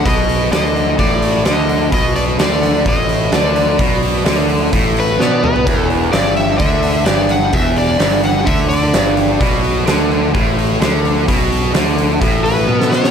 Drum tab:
CC |----------------|----------------|----------------|x---------------|
HH |o-o-o-o-o-o-o-o-|o-o-o-o-o-o-o-o-|o-o-o-o-o-o-----|o-o-o-o-o-o-o-o-|
SD |----o-------o---|----o-------o---|----o-------o---|----o-------o---|
T1 |----------------|----------------|----------------|----------------|
T2 |----------------|----------------|--------------o-|----------------|
FT |----------------|----------------|---------------o|----------------|
BD |o-------o-------|o-------o-------|o-------o-------|o-------o-------|

CC |----------------|----------------|----------------|
HH |o-o-o-o-o-o-o-o-|o-o-o-o-o-o-o-o-|o-o-o-o-o-o-----|
SD |----o-------o---|----o-------o---|----o--------ooo|
T1 |----------------|----------------|------------o---|
T2 |----------------|----------------|----------------|
FT |----------------|----------------|----------------|
BD |o-------o-------|o-------o-------|o-------o-------|